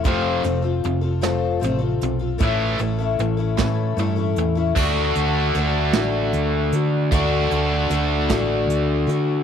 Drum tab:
CC |------|------|x-----|------|
HH |xxxxxx|xxxxxx|-xxxxx|xxxxxx|
SD |---o--|---o--|---o--|---o--|
BD |o-----|o--o--|o-----|o--o--|